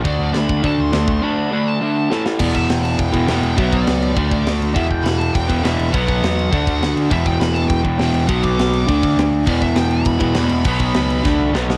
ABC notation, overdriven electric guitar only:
X:1
M:4/4
L:1/8
Q:1/4=204
K:Em
V:1 name="Overdriven electric guitar" clef=bass
[D,A,D]2 [D,A,D]2 [D,A,D]2 [D,A,D]2 | [D,A,D]2 [D,A,D]2 [D,A,D]2 [A,,E,A,]2 | [E,,B,,E,]4- [E,,B,,E,] [E,,B,,E,] [E,,B,,E,]2 | [B,,F,B,]4 [D,A,D]4 |
[E,,B,,E,]4- [E,,B,,E,] [E,,B,,E,] [E,,B,,E,]2 | [B,,F,B,]4 [D,A,D]4 | [E,,B,,E,]4- [E,,B,,E,] [E,,B,,E,] [E,,B,,E,]2 | [B,,F,B,]4 [D,A,D]4 |
[E,,B,,E,]4- [E,,B,,E,] [E,,B,,E,] [E,,B,,E,]2 | [B,,F,B,]4 [D,A,D]2 [B,,F,B,]2 |]